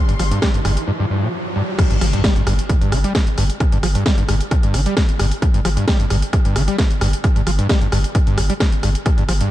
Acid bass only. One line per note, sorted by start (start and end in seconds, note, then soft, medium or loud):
0.09 0.15 G2 loud
0.19 0.23 F3 loud
0.31 0.40 G2 medium
0.42 0.52 G3 loud
0.54 0.60 G2 medium
0.65 0.71 G2 loud
0.88 0.92 G2 loud
1.00 1.06 G2 loud
1.10 1.24 G2 medium
1.22 1.28 A#2 medium
1.56 1.62 G2 medium
1.78 1.82 G2 loud
1.91 1.96 G2 loud
2.01 2.05 F3 loud
2.13 2.22 G2 medium
2.24 2.34 G3 loud
2.36 2.42 G2 medium
2.47 2.53 G2 loud
2.70 2.73 G2 loud
2.81 2.94 G2 loud
2.92 2.99 D3 medium
3.04 3.13 G3 medium
3.38 3.44 G2 loud
3.60 3.64 G2 loud
3.72 3.78 G2 loud
3.83 3.87 F3 loud
3.95 4.04 G2 medium
4.06 4.16 G3 loud
4.18 4.24 G2 medium
4.29 4.35 G2 loud
4.51 4.55 G2 loud
4.63 4.75 G2 loud
4.74 4.81 D3 medium
4.86 4.95 G3 medium
5.19 5.26 G2 loud
5.42 5.46 G2 loud
5.54 5.60 G2 loud
5.65 5.69 F3 loud
5.77 5.86 G2 medium
5.88 5.98 G3 loud
6.00 6.05 G2 medium
6.10 6.17 G2 loud
6.33 6.37 G2 loud
6.45 6.57 G2 loud
6.56 6.62 D3 medium
6.68 6.77 G3 medium
7.01 7.08 G2 loud
7.24 7.28 G2 loud
7.36 7.42 G2 loud
7.47 7.51 F3 loud
7.59 7.68 G2 medium
7.69 7.79 G3 loud
7.81 7.87 G2 medium
7.92 7.99 G2 loud
8.15 8.19 G2 loud
8.27 8.39 G2 loud
8.38 8.42 F2 loud
8.50 8.53 G3 loud
8.83 8.90 G2 medium
9.06 9.10 G2 loud
9.18 9.24 G2 loud
9.29 9.33 F3 loud
9.41 9.49 G2 medium